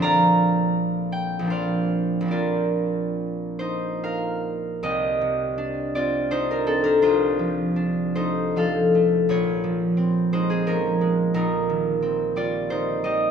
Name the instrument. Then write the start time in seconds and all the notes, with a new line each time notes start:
harp
Already playing: A#1 F3 C4 F4 C5 C6
0.00 D4 D5 F5 A#5
1.12 G5
1.39 A#1 F3
1.45 C4 D4
1.50 C5 D5 F5
2.21 A#1 F3
2.26 C4 D4
2.31 F4 A#4 D5
3.59 D#4 C5
4.04 A#4 F5
4.83 C2 G4 D#5
5.21 C3
5.58 D4
5.95 C4 F4 D5
6.31 D4 D#4 C5
6.51 D4 A#4
6.67 C4 A4
6.84 D4 A#4
7.02 C2 F4 C5
7.39 F3
7.76 D4
8.15 A3 D#4 C5
8.56 F3 A4 F5
8.95 A3
9.29 A#1 F4 C#5
9.64 F3
9.97 C4
10.33 G#3 D#4 C5
10.50 C4 G#4
10.67 F3 C#4 A#4
11.01 G#3
11.34 A#1 D#4 A#4
11.70 D#3
12.02 C4
12.36 G3 F4 D5
12.70 D#3 D#4 C5
13.04 G3 G4 D#5